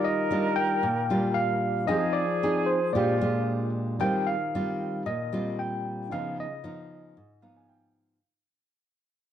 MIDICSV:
0, 0, Header, 1, 5, 480
1, 0, Start_track
1, 0, Key_signature, -3, "major"
1, 0, Tempo, 526778
1, 1730, Time_signature, 4, 2, 24, 8
1, 8492, End_track
2, 0, Start_track
2, 0, Title_t, "Tine electric piano"
2, 0, Program_c, 0, 4
2, 41, Note_on_c, 0, 75, 97
2, 509, Note_on_c, 0, 79, 106
2, 540, Note_off_c, 0, 75, 0
2, 1224, Note_on_c, 0, 77, 93
2, 1262, Note_off_c, 0, 79, 0
2, 1708, Note_on_c, 0, 75, 96
2, 1732, Note_off_c, 0, 77, 0
2, 1941, Note_on_c, 0, 74, 94
2, 1967, Note_off_c, 0, 75, 0
2, 2401, Note_off_c, 0, 74, 0
2, 2426, Note_on_c, 0, 72, 75
2, 2669, Note_on_c, 0, 74, 72
2, 2686, Note_off_c, 0, 72, 0
2, 3363, Note_off_c, 0, 74, 0
2, 3651, Note_on_c, 0, 79, 94
2, 3888, Note_on_c, 0, 77, 86
2, 3898, Note_off_c, 0, 79, 0
2, 4572, Note_off_c, 0, 77, 0
2, 4613, Note_on_c, 0, 75, 89
2, 5094, Note_on_c, 0, 79, 83
2, 5106, Note_off_c, 0, 75, 0
2, 5580, Note_on_c, 0, 77, 82
2, 5586, Note_off_c, 0, 79, 0
2, 5798, Note_off_c, 0, 77, 0
2, 5832, Note_on_c, 0, 75, 79
2, 6745, Note_off_c, 0, 75, 0
2, 8492, End_track
3, 0, Start_track
3, 0, Title_t, "Flute"
3, 0, Program_c, 1, 73
3, 0, Note_on_c, 1, 70, 97
3, 1487, Note_off_c, 1, 70, 0
3, 1724, Note_on_c, 1, 68, 108
3, 2693, Note_on_c, 1, 65, 88
3, 2707, Note_off_c, 1, 68, 0
3, 3412, Note_off_c, 1, 65, 0
3, 8492, End_track
4, 0, Start_track
4, 0, Title_t, "Grand piano"
4, 0, Program_c, 2, 0
4, 0, Control_c, 2, 64, 127
4, 0, Note_on_c, 2, 51, 42
4, 0, Note_on_c, 2, 65, 42
4, 0, Note_on_c, 2, 67, 39
4, 0, Note_on_c, 2, 70, 42
4, 0, Note_on_c, 2, 86, 46
4, 1679, Note_off_c, 2, 51, 0
4, 1687, Note_off_c, 2, 65, 0
4, 1690, Note_on_c, 2, 53, 46
4, 1692, Note_off_c, 2, 67, 0
4, 1700, Note_off_c, 2, 70, 0
4, 1705, Note_on_c, 2, 63, 41
4, 1706, Note_off_c, 2, 86, 0
4, 1715, Note_on_c, 2, 79, 40
4, 1732, Note_on_c, 2, 68, 41
4, 1742, Control_c, 2, 64, 0
4, 1747, Note_on_c, 2, 72, 49
4, 1899, Control_c, 2, 64, 127
4, 2651, Note_off_c, 2, 53, 0
4, 2658, Note_off_c, 2, 63, 0
4, 2663, Note_off_c, 2, 79, 0
4, 2668, Note_on_c, 2, 46, 50
4, 2672, Note_off_c, 2, 68, 0
4, 2676, Note_on_c, 2, 62, 47
4, 2679, Note_off_c, 2, 72, 0
4, 2688, Note_on_c, 2, 65, 44
4, 2702, Control_c, 2, 64, 0
4, 2705, Note_on_c, 2, 67, 44
4, 2720, Note_on_c, 2, 72, 55
4, 2859, Control_c, 2, 64, 127
4, 3619, Note_off_c, 2, 46, 0
4, 3624, Note_off_c, 2, 62, 0
4, 3630, Note_off_c, 2, 65, 0
4, 3634, Note_on_c, 2, 51, 47
4, 3638, Note_off_c, 2, 67, 0
4, 3646, Note_off_c, 2, 72, 0
4, 3649, Note_on_c, 2, 65, 37
4, 3656, Note_on_c, 2, 67, 38
4, 3663, Control_c, 2, 64, 0
4, 3673, Note_on_c, 2, 70, 35
4, 3684, Note_on_c, 2, 72, 44
4, 3805, Control_c, 2, 64, 127
4, 5525, Note_off_c, 2, 51, 0
4, 5533, Note_off_c, 2, 65, 0
4, 5536, Note_off_c, 2, 67, 0
4, 5545, Note_off_c, 2, 70, 0
4, 5546, Note_on_c, 2, 49, 38
4, 5550, Note_off_c, 2, 72, 0
4, 5559, Note_on_c, 2, 65, 42
4, 5573, Note_on_c, 2, 68, 41
4, 5583, Control_c, 2, 64, 0
4, 5590, Note_on_c, 2, 71, 37
4, 5601, Note_on_c, 2, 75, 50
4, 5753, Control_c, 2, 64, 127
4, 6764, Note_on_c, 2, 77, 57
4, 6879, Note_off_c, 2, 77, 0
4, 6893, Note_on_c, 2, 80, 56
4, 7003, Note_off_c, 2, 80, 0
4, 7006, Note_on_c, 2, 79, 52
4, 7442, Note_off_c, 2, 49, 0
4, 7448, Note_off_c, 2, 65, 0
4, 7455, Note_off_c, 2, 68, 0
4, 7455, Note_off_c, 2, 79, 0
4, 7464, Note_off_c, 2, 71, 0
4, 7469, Note_off_c, 2, 75, 0
4, 7500, Control_c, 2, 64, 0
4, 8492, End_track
5, 0, Start_track
5, 0, Title_t, "Nylon-string guitar"
5, 0, Program_c, 3, 24
5, 0, Note_on_c, 3, 51, 64
5, 0, Note_on_c, 3, 55, 62
5, 0, Note_on_c, 3, 65, 64
5, 269, Note_off_c, 3, 55, 0
5, 278, Note_off_c, 3, 65, 0
5, 280, Note_on_c, 3, 55, 62
5, 287, Note_on_c, 3, 62, 64
5, 291, Note_on_c, 3, 65, 60
5, 735, Note_off_c, 3, 51, 0
5, 756, Note_on_c, 3, 46, 76
5, 762, Note_off_c, 3, 55, 0
5, 767, Note_off_c, 3, 62, 0
5, 767, Note_off_c, 3, 65, 0
5, 1004, Note_on_c, 3, 55, 61
5, 1009, Note_on_c, 3, 65, 64
5, 1013, Note_on_c, 3, 62, 59
5, 1689, Note_off_c, 3, 55, 0
5, 1691, Note_off_c, 3, 65, 0
5, 1693, Note_off_c, 3, 62, 0
5, 1699, Note_off_c, 3, 46, 0
5, 1712, Note_on_c, 3, 60, 60
5, 1717, Note_on_c, 3, 53, 68
5, 1717, Note_on_c, 3, 63, 54
5, 1721, Note_on_c, 3, 68, 56
5, 2030, Note_off_c, 3, 60, 0
5, 2033, Note_off_c, 3, 63, 0
5, 2035, Note_off_c, 3, 68, 0
5, 2214, Note_on_c, 3, 60, 55
5, 2218, Note_on_c, 3, 63, 57
5, 2221, Note_on_c, 3, 68, 64
5, 2536, Note_off_c, 3, 60, 0
5, 2536, Note_off_c, 3, 63, 0
5, 2536, Note_off_c, 3, 68, 0
5, 2660, Note_off_c, 3, 53, 0
5, 2688, Note_on_c, 3, 46, 66
5, 2688, Note_on_c, 3, 56, 57
5, 2691, Note_on_c, 3, 62, 54
5, 2697, Note_on_c, 3, 67, 65
5, 2890, Note_off_c, 3, 56, 0
5, 2892, Note_off_c, 3, 62, 0
5, 2894, Note_off_c, 3, 67, 0
5, 2929, Note_on_c, 3, 56, 52
5, 2929, Note_on_c, 3, 62, 64
5, 2931, Note_on_c, 3, 67, 58
5, 3610, Note_off_c, 3, 62, 0
5, 3611, Note_off_c, 3, 56, 0
5, 3612, Note_off_c, 3, 67, 0
5, 3626, Note_off_c, 3, 46, 0
5, 3641, Note_on_c, 3, 51, 62
5, 3645, Note_on_c, 3, 55, 51
5, 3651, Note_on_c, 3, 60, 54
5, 3653, Note_on_c, 3, 65, 57
5, 3956, Note_off_c, 3, 55, 0
5, 3957, Note_off_c, 3, 60, 0
5, 3961, Note_off_c, 3, 65, 0
5, 4145, Note_on_c, 3, 55, 56
5, 4146, Note_on_c, 3, 60, 63
5, 4154, Note_on_c, 3, 65, 61
5, 4582, Note_off_c, 3, 51, 0
5, 4610, Note_on_c, 3, 46, 71
5, 4614, Note_off_c, 3, 60, 0
5, 4615, Note_off_c, 3, 55, 0
5, 4619, Note_off_c, 3, 65, 0
5, 4852, Note_on_c, 3, 55, 61
5, 4857, Note_on_c, 3, 60, 58
5, 4863, Note_on_c, 3, 65, 71
5, 5534, Note_off_c, 3, 55, 0
5, 5534, Note_off_c, 3, 60, 0
5, 5536, Note_off_c, 3, 65, 0
5, 5546, Note_off_c, 3, 46, 0
5, 5571, Note_on_c, 3, 49, 67
5, 5577, Note_on_c, 3, 53, 55
5, 5577, Note_on_c, 3, 59, 56
5, 5581, Note_on_c, 3, 63, 60
5, 5881, Note_off_c, 3, 59, 0
5, 5882, Note_off_c, 3, 53, 0
5, 5885, Note_off_c, 3, 63, 0
5, 6048, Note_on_c, 3, 53, 60
5, 6052, Note_on_c, 3, 59, 53
5, 6058, Note_on_c, 3, 63, 64
5, 6508, Note_off_c, 3, 49, 0
5, 6527, Note_off_c, 3, 59, 0
5, 6528, Note_off_c, 3, 53, 0
5, 6528, Note_off_c, 3, 63, 0
5, 6532, Note_on_c, 3, 44, 69
5, 6763, Note_on_c, 3, 53, 56
5, 6767, Note_on_c, 3, 59, 59
5, 6771, Note_on_c, 3, 63, 57
5, 7449, Note_off_c, 3, 53, 0
5, 7449, Note_off_c, 3, 59, 0
5, 7452, Note_off_c, 3, 63, 0
5, 7467, Note_off_c, 3, 44, 0
5, 8492, End_track
0, 0, End_of_file